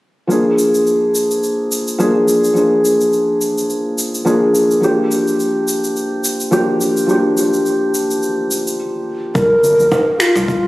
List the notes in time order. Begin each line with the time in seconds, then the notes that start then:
0.27 F3 A#3 D4 G#4, shaker
0.59 shaker
0.74 shaker
0.87 shaker
1.15 shaker
1.31 shaker
1.43 shaker
1.72 shaker
1.87 shaker
1.98 F3 A#3 D4 G#4, shaker
2.28 shaker
2.44 shaker
2.54 F3 A#3 D4, shaker
2.58 G#4
2.85 shaker
3.01 shaker
3.13 shaker
3.41 shaker
3.58 shaker
3.70 shaker
3.98 shaker
4.14 shaker
4.25 F3 A#3 D4 G#4, shaker
4.55 shaker
4.71 shaker
4.81 F3 A#3 D4 G4, shaker
5.11 shaker
5.27 shaker
5.40 shaker
5.68 shaker
5.84 shaker
5.96 shaker
6.24 shaker
6.40 shaker
6.51 F3 A#3 D4 G4, shaker
6.81 shaker
6.97 shaker
7.07 F3 A#3 D4, shaker
7.11 G4
7.37 shaker
7.53 shaker
7.66 shaker
7.94 shaker
8.11 shaker
8.23 shaker
8.51 shaker
8.67 shaker
9.35 C2 A#4, kick, shaker
9.63 G1, shaker
9.80 A#1, shaker
9.92 kick, djembe tone, shaker
10.20 F4, finger snap, shaker
10.36 C2, djembe slap, shaker
10.48 kick, shaker